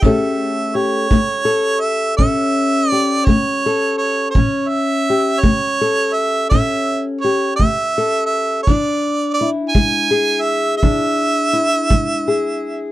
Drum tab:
BD |o--o--o--o--|o--o--o--o--|o--o--o--o--|